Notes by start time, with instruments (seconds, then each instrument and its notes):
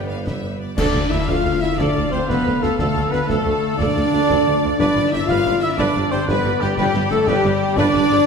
Already playing: tuba G1, double bass section G1, french horn section G3, cello section B3, viola section G4 B4, flute section B4, violin section B4, clarinet D5
0.07 violin section F5
0.25 violin section E5, concert bass drum, snare
0.60 violin section D5
0.76 cello section D2, double bass section D2, tuba D2, harp D3, french horn section D4, viola section A4 F5, violin section D5, oboe D5, flute section D5, trumpet D5, concert bass drum, snare, crash
0.94 cello section D2, double bass section D2, tuba D2, viola section A4
1.09 cello section D2, tuba D2, double bass section D2, french horn section E4, viola section F4, flute section E5, violin section E5, oboe E5, trumpet E5
1.20 harp A5
1.26 cello section D2, tuba D2, double bass section D2, french horn section F4, viola section A4, violin section F5, flute section F5, trumpet F5, oboe F5, harp F5, concert bass drum, snare
1.44 double bass section D2, tuba D2, cello section D2, harp F4, viola section A4
1.53 harp D4
1.60 harp A3, french horn section E4, violin section E5, flute section E5, trumpet E5, oboe E5
1.69 harp D4
1.77 double bass section D2, cello section D2, tuba D2, harp A3, french horn section D4, viola section A4, flute section D5, violin section D5, oboe D5, trumpet D5, concert bass drum, snare
1.95 double bass section D2, cello section D2, tuba D2, harp A4, viola section A4
2.10 tuba D2, double bass section D2, cello section D2, french horn section C4, viola section F4, flute section C5, violin section C5, oboe C5, trumpet C5, harp F5
2.20 harp A5
2.27 tuba D2, double bass section D2, cello section D2, french horn section B3, viola section A4, flute section B4, violin section B4, oboe B4, trumpet B4, harp F5, concert bass drum, snare
2.37 harp A4
2.45 cello section D2, tuba D2, double bass section D2, harp F4, viola section A4
2.61 tuba D2, cello section D2, double bass section D2, french horn section A3, harp A3, viola section F4, violin section A4, flute section A4, trumpet A4, oboe A4, snare
2.70 harp D4
2.77 tuba D2, cello section D2, double bass section D2, harp D3, french horn section A3, violin section A4, viola section A4, trumpet A4, oboe A4, flute section A4, concert bass drum, snare
2.87 harp A3
2.95 tuba D2, cello section D2, double bass section D2, viola section A4, snare
3.03 harp D5
3.11 tuba D2, double bass section D2, cello section D2, french horn section B3, viola section F4, violin section B4, oboe B4, trumpet B4, flute section B4, harp F5, snare
3.20 harp A5
3.26 tuba D2, cello section D2, double bass section D2, french horn section A3, violin section A4, flute section A4, trumpet A4, oboe A4, harp F5, concert bass drum, snare
3.31 viola section A4
3.46 tuba D2, cello section D2, double bass section D2, harp F4, viola section A4
3.54 harp D4
3.64 harp A3
3.71 harp D4
3.78 cello section D2, double bass section D2, tuba D2, harp A3, french horn section D4, viola section A4, oboe D5, violin section D5, flute section D5, trumpet D5, concert bass drum, snare
3.96 double bass section D2, cello section D2, tuba D2, viola section A4
4.12 tuba D2, double bass section D2, cello section D2, viola section F4, harp F5
4.29 tuba D2, cello section D2, double bass section D2, viola section A4, concert bass drum, snare
4.40 harp A4
4.46 tuba D2, cello section D2, double bass section D2, viola section A4
4.62 tuba D2, cello section D2, double bass section D2, harp A3, viola section F4
4.72 harp D4
4.78 tuba G1, double bass section G1, cello section G2, harp G2, french horn section D4, viola section B4 D5, violin section D5, oboe D5, flute section D5, trumpet D5, concert bass drum, snare, crash
4.95 tuba G1, double bass section G1, cello section G2, viola section B4, harp B4
5.10 tuba G1, double bass section G1, cello section G2, french horn section E4, viola section G4, harp D5, violin section E5, trumpet E5, oboe E5, flute section E5
5.22 harp B5
5.26 tuba G1, double bass section G1, cello section G2, french horn section F4, viola section B4, violin section F5, oboe F5, trumpet F5, flute section F5, concert bass drum, snare
5.38 harp B4
5.45 tuba G1, double bass section G1, cello section G2, viola section B4
5.54 harp B3
5.60 harp D3, french horn section E4, violin section E5, oboe E5, trumpet E5
5.64 flute section E5
5.71 harp B3
5.77 tuba G1, double bass section G1, cello section G2, harp D3, french horn section D4, viola section B4, violin section D5, oboe D5, trumpet D5, flute section D5, concert bass drum, snare
5.86 harp B3
5.94 tuba G1, double bass section G1, cello section G2, harp B4, viola section B4
6.10 tuba G1, double bass section G1, cello section G2, french horn section C4, viola section G4, violin section C5, oboe C5, trumpet C5, flute section C5
6.27 tuba G1, double bass section G1, cello section G2, french horn section B3, oboe B4, violin section B4, viola section B4, trumpet B4, flute section B4, concert bass drum, snare
6.44 tuba G1, double bass section G1, cello section G2, harp D4, viola section B4
6.59 tuba G1, double bass section G1, cello section G2, harp D3, french horn section G3, violin section G4, oboe G4, viola section G4, trumpet G4, flute section G4, snare
6.69 harp B3
6.76 tuba G1, double bass section G1, harp G2, cello section G2, french horn section G3, violin section G4, oboe G4, trumpet G4, flute section G4, viola section B4, concert bass drum, snare
6.86 harp D3
6.94 tuba G1, double bass section G1, cello section G2, harp B4, viola section B4, snare
7.02 harp D4
7.08 double bass section G1, tuba G1, cello section G2, french horn section A3, viola section G4, violin section A4, oboe A4, trumpet A4, flute section A4, harp D5, snare
7.19 harp B5
7.26 double bass section G1, tuba G1, cello section G2, french horn section G3, violin section G4, trumpet G4, oboe G4, flute section G4, viola section B4, harp D5, concert bass drum, snare
7.36 harp B4
7.44 double bass section G1, tuba G1, cello section G2, harp D4, viola section B4
7.53 harp B3
7.61 harp D3
7.69 harp B3
7.76 double bass section G1, tuba G1, cello section G2, harp D3, french horn section D4, viola section B4, violin section D5, oboe D5, flute section D5, trumpet D5, concert bass drum, snare
7.94 double bass section G1, tuba G1, cello section G2, viola section B4
8.11 double bass section G1, tuba G1, cello section G2, viola section G4